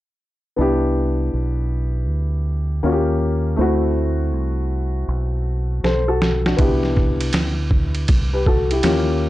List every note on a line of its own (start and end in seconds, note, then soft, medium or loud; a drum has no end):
0.56 1.30 C2 medium
0.56 2.79 B3 medium
0.56 2.79 D4 medium
0.56 2.80 E4 medium
0.61 2.81 G4 medium
1.34 2.09 B1 medium
2.09 2.80 D2 medium
2.83 3.55 D#2 medium
2.83 3.58 A#3 medium
2.83 3.59 C#4 medium
2.83 3.59 F4 medium
2.83 2.93 F#4 medium
2.92 3.63 G4 medium
3.56 4.34 D2 loud
3.56 6.54 A3 medium
3.56 6.54 C4 medium
3.56 5.80 E4 medium
3.61 5.81 F#4 medium
4.34 5.05 C2 medium
5.08 5.80 B1 medium
5.83 6.55 B1 medium
5.83 6.07 A4 soft
5.83 6.07 C5 medium
5.83 snare medium
6.08 6.44 F#4 medium
6.08 6.44 A4 medium
6.22 snare medium
6.46 6.57 D4 soft
6.46 6.81 F#4 medium
6.46 snare medium
6.57 7.30 C2 loud
6.57 8.79 B3 medium
6.57 8.80 D4 medium
6.57 8.06 E4 medium
6.57 kick loud
6.57 ride medium
6.61 8.07 G4 medium
6.83 snare soft
6.96 kick medium
6.96 snare soft
7.21 ride medium
7.33 8.05 D2 medium
7.33 snare loud
7.33 hi-hat pedal medium
7.33 ride medium
7.71 kick medium
7.95 ride soft
8.08 8.80 C2 medium
8.08 kick medium
8.08 ride medium
8.33 8.46 G4 soft
8.33 8.46 B4 medium
8.46 8.70 F#4 medium
8.46 8.70 A4 medium
8.46 kick medium
8.71 9.07 E4 soft
8.71 8.84 G4 medium
8.71 ride medium
8.83 9.29 D#2 medium
8.83 9.29 A#3 medium
8.83 9.29 C#4 medium
8.83 9.29 F4 medium
8.83 9.29 G4 medium
8.83 snare medium
8.83 hi-hat pedal soft
8.83 ride medium